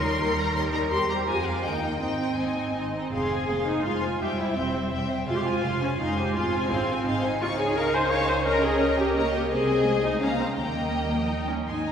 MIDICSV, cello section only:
0, 0, Header, 1, 2, 480
1, 0, Start_track
1, 0, Tempo, 354820
1, 1251, Time_signature, 3, 2, 24, 8
1, 2221, Tempo, 373832
1, 4141, Tempo, 358423
1, 7981, Tempo, 350058
1, 13741, Tempo, 369231
1, 15969, End_track
2, 0, Start_track
2, 0, Title_t, "Cello section"
2, 0, Program_c, 0, 48
2, 0, Note_on_c, 0, 70, 61
2, 1200, Note_off_c, 0, 70, 0
2, 1245, Note_on_c, 0, 67, 51
2, 2199, Note_off_c, 0, 67, 0
2, 2215, Note_on_c, 0, 63, 41
2, 2687, Note_off_c, 0, 63, 0
2, 2705, Note_on_c, 0, 60, 32
2, 3881, Note_off_c, 0, 60, 0
2, 4146, Note_on_c, 0, 60, 44
2, 4590, Note_off_c, 0, 60, 0
2, 4625, Note_on_c, 0, 58, 45
2, 5101, Note_off_c, 0, 58, 0
2, 5101, Note_on_c, 0, 56, 40
2, 5573, Note_off_c, 0, 56, 0
2, 5582, Note_on_c, 0, 55, 45
2, 7014, Note_on_c, 0, 56, 42
2, 7020, Note_off_c, 0, 55, 0
2, 8433, Note_off_c, 0, 56, 0
2, 8468, Note_on_c, 0, 60, 49
2, 8944, Note_on_c, 0, 65, 56
2, 8948, Note_off_c, 0, 60, 0
2, 9430, Note_off_c, 0, 65, 0
2, 9434, Note_on_c, 0, 63, 58
2, 11301, Note_off_c, 0, 63, 0
2, 11337, Note_on_c, 0, 61, 65
2, 12296, Note_on_c, 0, 58, 57
2, 12300, Note_off_c, 0, 61, 0
2, 12774, Note_off_c, 0, 58, 0
2, 12776, Note_on_c, 0, 60, 58
2, 13245, Note_off_c, 0, 60, 0
2, 13261, Note_on_c, 0, 56, 53
2, 13741, Note_on_c, 0, 58, 46
2, 13743, Note_off_c, 0, 56, 0
2, 14217, Note_on_c, 0, 55, 39
2, 14218, Note_off_c, 0, 58, 0
2, 14656, Note_off_c, 0, 55, 0
2, 14704, Note_on_c, 0, 55, 50
2, 14927, Note_off_c, 0, 55, 0
2, 14942, Note_on_c, 0, 53, 43
2, 15180, Note_on_c, 0, 55, 41
2, 15181, Note_off_c, 0, 53, 0
2, 15417, Note_off_c, 0, 55, 0
2, 15426, Note_on_c, 0, 58, 42
2, 15521, Note_off_c, 0, 58, 0
2, 15670, Note_on_c, 0, 44, 44
2, 15969, Note_off_c, 0, 44, 0
2, 15969, End_track
0, 0, End_of_file